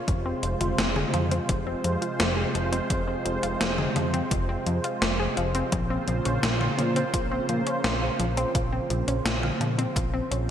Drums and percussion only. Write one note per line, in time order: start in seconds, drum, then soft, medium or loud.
0.08 kick loud
0.08 closed hi-hat medium
0.43 closed hi-hat medium
0.61 closed hi-hat medium
0.61 mid tom medium
0.78 snare loud
0.78 closed hi-hat medium
0.96 mid tom medium
1.14 closed hi-hat medium
1.14 mid tom medium
1.31 closed hi-hat medium
1.49 kick loud
1.49 closed hi-hat medium
1.84 closed hi-hat medium
2.02 closed hi-hat medium
2.20 snare loud
2.20 closed hi-hat medium
2.55 closed hi-hat medium
2.73 closed hi-hat medium
2.90 kick loud
2.90 closed hi-hat medium
3.26 closed hi-hat medium
3.43 closed hi-hat medium
3.61 snare loud
3.61 closed hi-hat medium
3.78 mid tom loud
3.96 closed hi-hat medium
3.96 mid tom medium
4.14 closed hi-hat medium
4.31 kick loud
4.31 closed hi-hat medium
4.67 closed hi-hat medium
4.84 closed hi-hat medium
5.02 snare loud
5.02 closed hi-hat medium
5.37 closed hi-hat medium
5.55 closed hi-hat medium
5.72 kick loud
5.72 closed hi-hat medium
6.08 closed hi-hat medium
6.25 closed hi-hat medium
6.25 mid tom medium
6.43 snare loud
6.43 closed hi-hat medium
6.61 mid tom loud
6.79 closed hi-hat medium
6.79 mid tom medium
6.96 closed hi-hat medium
7.14 kick loud
7.14 closed hi-hat medium
7.49 closed hi-hat medium
7.67 closed hi-hat medium
7.84 snare loud
7.84 closed hi-hat medium
8.20 closed hi-hat medium
8.37 closed hi-hat medium
8.55 kick loud
8.55 closed hi-hat medium
8.90 closed hi-hat medium
9.08 closed hi-hat medium
9.26 snare loud
9.26 closed hi-hat medium
9.43 mid tom medium
9.61 closed hi-hat medium
9.61 mid tom medium
9.79 closed hi-hat medium
9.96 kick loud
9.96 closed hi-hat medium
10.32 closed hi-hat medium